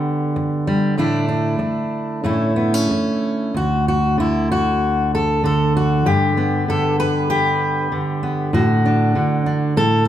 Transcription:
0.00 3.54 D3 medium
0.00 0.66 G3 medium
0.00 0.97 B3 medium
0.00 0.95 G4 medium
0.36 muted steel-string acoustic guitar stroke medium
0.67 0.98 G3 medium
0.98 1.58 A2 medium
0.98 2.20 A3 medium
0.98 1.27 D4 medium
0.98 2.24 E4 medium
1.29 2.20 D4 medium
1.59 muted steel-string acoustic guitar stroke medium
2.24 2.89 A2 medium
2.24 3.51 A3 medium
2.24 2.56 C#4 medium
2.24 3.56 E4 medium
2.56 2.74 B3 medium
2.74 3.55 C#4 soft
2.90 muted steel-string acoustic guitar stroke medium
3.54 6.05 D2 medium
3.54 3.87 F#4 medium
3.88 4.19 F#4 medium
4.18 5.42 D3 medium
4.18 4.51 E4 medium
4.52 5.14 F#4 medium
5.15 5.44 A4 medium
5.44 6.67 D3 medium
5.44 5.76 A4 medium
5.77 6.07 F#4 medium
6.06 8.49 G2 medium
6.06 7.29 G4 medium
6.37 8.22 B3 soft
6.68 7.91 D3 medium
6.68 6.99 A4 medium
7.00 7.92 B4 loud
7.30 8.53 G4 medium
7.92 9.14 D3 medium
8.23 8.50 B3 soft
8.53 9.15 A2 medium
8.53 9.77 F#4 medium
8.86 9.45 D4 soft
9.15 9.77 D3 medium
9.46 9.73 D4 soft
9.77 10.08 A2 medium
9.77 10.07 A4 loud

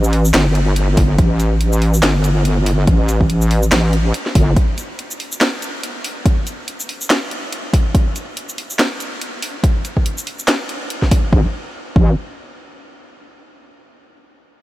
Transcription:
0.00 0.33 A1 medium
0.00 shaker medium
0.13 open hi-hat medium
0.25 shaker medium
0.34 1.17 G1 medium
0.34 snare loud
0.34 clap loud
0.34 closed hi-hat medium
0.55 closed hi-hat medium
0.76 closed hi-hat medium
0.97 kick loud
0.97 open hi-hat medium
1.19 2.02 A1 medium
1.19 kick loud
1.19 closed hi-hat medium
1.40 closed hi-hat medium
1.40 shaker medium
1.61 closed hi-hat medium
1.73 shaker medium
1.82 open hi-hat medium
1.94 shaker medium
2.03 2.86 G1 loud
2.03 snare loud
2.03 clap loud
2.03 closed hi-hat medium
2.24 closed hi-hat soft
2.24 shaker medium
2.45 closed hi-hat medium
2.66 open hi-hat medium
2.87 3.71 A1 loud
2.87 kick loud
2.87 closed hi-hat medium
3.09 closed hi-hat medium
3.09 shaker medium
3.21 kick medium
3.30 closed hi-hat medium
3.42 shaker medium
3.51 open hi-hat medium
3.63 shaker medium
3.72 4.13 A1 medium
3.72 snare loud
3.72 clap medium
3.72 closed hi-hat medium
3.93 closed hi-hat medium
4.14 closed hi-hat medium
4.26 snare soft
4.35 4.55 G1 medium
4.35 kick loud
4.35 open hi-hat medium
4.56 kick loud
4.56 closed hi-hat medium
4.78 closed hi-hat soft
4.78 shaker medium
4.99 closed hi-hat medium
5.11 shaker medium
5.20 open hi-hat medium
5.32 shaker medium
5.41 snare loud
5.41 clap medium
5.41 closed hi-hat medium
5.62 closed hi-hat medium
5.62 shaker medium
5.83 closed hi-hat medium
6.04 open hi-hat medium
6.26 kick loud
6.26 closed hi-hat medium
6.47 closed hi-hat medium
6.47 shaker medium
6.68 closed hi-hat medium
6.80 shaker medium
6.89 open hi-hat medium
7.01 shaker medium
7.10 snare loud
7.10 clap medium
7.10 closed hi-hat medium
7.31 closed hi-hat medium
7.53 closed hi-hat medium
7.73 kick loud
7.73 open hi-hat medium
7.95 kick loud
7.95 closed hi-hat medium
8.16 closed hi-hat medium
8.16 shaker soft
8.37 closed hi-hat medium
8.49 shaker medium
8.58 open hi-hat medium
8.70 shaker medium
8.79 snare loud
8.79 clap medium
8.79 closed hi-hat medium
9.00 closed hi-hat medium
9.00 shaker medium
9.21 closed hi-hat medium
9.42 open hi-hat medium
9.64 kick loud
9.64 closed hi-hat medium
9.85 closed hi-hat medium
9.85 shaker soft
9.97 kick medium
10.06 closed hi-hat medium
10.18 shaker medium
10.27 open hi-hat medium
10.39 shaker medium
10.48 snare loud
10.48 clap medium
10.48 closed hi-hat medium
10.69 closed hi-hat medium
10.90 closed hi-hat medium
11.02 kick medium
11.02 snare soft
11.11 kick loud
11.11 open hi-hat medium
11.33 11.45 A1 medium
11.33 kick loud
11.96 12.16 A1 loud
11.96 kick loud

